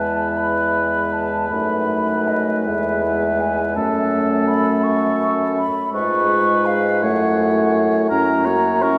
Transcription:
Already playing: E2 G#3 E4 B4
0.00 A5
0.37 B5
1.13 A5
1.50 F#2 A3 D#4 B5
2.28 D#5
2.66 E2 G#3 E4 E5
3.41 G#5
3.76 F#2 A3 C#4 A4 A5
4.48 B5
4.84 C#6
5.57 B5
5.92 G#2 G#3 F4 B4 C#6
6.66 F5
7.01 F#2 A3 E4 C#5 F#5
8.09 F#2 C#4 E4 A#4 A#5
8.45 A#3 F#4 C#5
8.82 C#4 E4 A#4 C#6

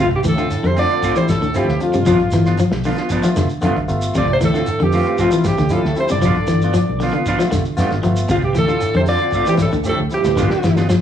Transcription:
Already playing: A3 C4
0.00 F2 C3 F4
0.11 muted clean electric guitar stroke, kick, closed hi-hat
0.15 G2 G4
0.23 D2 E3 A4, muted clean electric guitar stroke, closed hi-hat, shekere
0.28 A2 A4
0.38 D3 C4 F4, shekere
0.50 muted clean electric guitar stroke, closed hi-hat, shekere
0.63 F2 C3 D3 C5, closed hi-hat
0.67 C5
0.76 D3 A3 C4 F4 D5, open hi-hat, shekere
0.80 D5
0.90 C4 F4, closed hi-hat
1.02 A3 C4 F4, kick, closed hi-hat, shekere
1.16 C3 E3 F3 C4 E4 C5, muted clean electric guitar stroke, closed hi-hat, shekere
1.28 A2 A4, muted clean electric guitar stroke, kick, snare, closed hi-hat, shekere
1.41 D2 D3, closed hi-hat, shekere
1.54 G2 F3 A3 C4 E4 F4 G4, closed hi-hat, shekere
1.68 D2, muted clean electric guitar stroke, snare
1.80 F2 F3 C4 D4 F4, muted clean electric guitar stroke, closed hi-hat, shekere
1.94 G2 C3, muted clean electric guitar stroke, closed hi-hat, shekere
2.06 G1 F3 B3 D4 F4, kick, closed hi-hat, shekere
2.20 muted clean electric guitar stroke, kick, closed hi-hat
2.31 G1 E3, muted clean electric guitar stroke, snare, closed hi-hat, shekere
2.45 B3 D4 F4, snare, shekere
2.57 F3, muted clean electric guitar stroke, closed hi-hat, shekere
2.71 B1, snare
2.83 D3 F3 B3 D4 F4, open hi-hat, shekere
2.97 B3 F4, muted clean electric guitar stroke, snare, closed hi-hat
3.09 F3 B3 D4, muted clean electric guitar stroke, kick, closed hi-hat, shekere
3.23 F3 A3 B3 F4, muted clean electric guitar stroke, snare, closed hi-hat, shekere
3.36 F1 D3, muted clean electric guitar stroke, snare, closed hi-hat, shekere
3.49 closed hi-hat, shekere
3.61 G2 D3 F3 A3 B3 D4 F4, closed hi-hat, shekere
3.76 G1, muted clean electric guitar stroke, kick, closed hi-hat
3.88 G1 A3 B3 F4, muted clean electric guitar stroke, closed hi-hat, shekere
4.02 muted clean electric guitar stroke, shekere
4.15 D2 C3 D3 F3 A3 C4 F4 D5, kick, closed hi-hat, shekere
4.20 D5
4.28 C3, muted clean electric guitar stroke, kick, closed hi-hat
4.33 C5
4.40 D2 A2 E3, muted clean electric guitar stroke, snare, closed hi-hat, shekere
4.44 A4
4.54 D3 A3 C4 F4, snare, shekere
4.66 muted clean electric guitar stroke, closed hi-hat, shekere
4.80 F2 G2 D3 G4, closed hi-hat
4.92 F3 A3 C4 F4, open hi-hat, shekere
5.07 A3 C4 F4, closed hi-hat
5.18 F2 F3 A3 C4 F4, kick, closed hi-hat, shekere
5.31 E3 F3 C4 E4, muted clean electric guitar stroke, closed hi-hat, shekere
5.44 G2 G4, muted clean electric guitar stroke, kick, snare, closed hi-hat, shekere
5.48 G4
5.58 D2 D3, snare, closed hi-hat, shekere
5.69 A2 F3 C4 E4 F4 A4, muted clean electric guitar stroke, closed hi-hat, shekere
5.73 A4
5.85 D2, muted clean electric guitar stroke, snare
5.95 C3 F3 C4 E4 C5, muted clean electric guitar stroke, closed hi-hat, shekere
6.00 C5
6.09 G2 C3 D3 D5, muted clean electric guitar stroke, closed hi-hat, shekere
6.22 G1 F3 B3 D4 F4, kick, closed hi-hat, shekere
6.36 muted clean electric guitar stroke, kick, closed hi-hat
6.47 G1 E3, muted clean electric guitar stroke, snare, closed hi-hat, shekere
6.62 B3 D4 F4, shekere
6.74 F3, muted clean electric guitar stroke, closed hi-hat, shekere
6.89 B1
7.00 D3 F3 B3 D4 F4, open hi-hat, shekere
7.13 D3 F4, muted clean electric guitar stroke, closed hi-hat
7.17 B3
7.26 F3 B3 D4 F4, kick, closed hi-hat, shekere
7.39 F3 A3 B3 F4, muted clean electric guitar stroke, snare, closed hi-hat, shekere
7.51 F1 D3, muted clean electric guitar stroke, kick, snare, closed hi-hat, shekere
7.65 muted fingered electric bass stroke, closed hi-hat, shekere
7.77 G2 A3 B3 D4 F4, snare, closed hi-hat, shekere
7.90 G1, muted clean electric guitar stroke, snare, closed hi-hat
8.03 G1 F3 A3 B3 F4, muted clean electric guitar stroke, closed hi-hat, shekere
8.17 muted clean electric guitar stroke, shekere
8.28 D2 F2 C3 A3 C4 F4, kick, closed hi-hat, shekere
8.42 G2 G4, muted clean electric guitar stroke, kick, closed hi-hat
8.47 G4
8.55 D2 A2 E3 A4, muted clean electric guitar stroke, snare, closed hi-hat, shekere
8.60 A4
8.68 D3 F4, muted clean electric guitar stroke, shekere
8.80 muted clean electric guitar stroke, closed hi-hat, shekere
8.94 F2 C3 D3 C5, closed hi-hat
9.00 C5
9.06 D3 C4 F4 D5, open hi-hat, shekere
9.11 D5
9.19 C4 F4, closed hi-hat
9.31 A3, kick, closed hi-hat, shekere
9.35 C4 F4
9.45 E3 F3 C4 E4 G4, muted clean electric guitar stroke, closed hi-hat, shekere
9.50 G2 G4
9.57 muted clean electric guitar stroke, kick, snare, closed hi-hat, shekere
9.62 A2 A4
9.71 D2 D3, closed hi-hat, shekere
9.84 F3 A3 C4 G4, muted clean electric guitar stroke, closed hi-hat, shekere
9.89 A2 A4
9.99 D2, muted clean electric guitar stroke
10.10 F3 C4 E4 G4, muted clean electric guitar stroke, closed hi-hat, shekere
10.15 G2 G4
10.24 D2 A2, muted clean electric guitar stroke, snare, closed hi-hat, shekere
10.36 G1 D3 F3 B3 D4 F4, kick, snare, shekere
10.50 muted fingered electric bass stroke, muted clean electric guitar stroke, snare
10.63 G1 E3, muted clean electric guitar stroke, snare, shekere
10.77 B3 D4 F4, snare, shekere
10.89 F3, snare, shekere

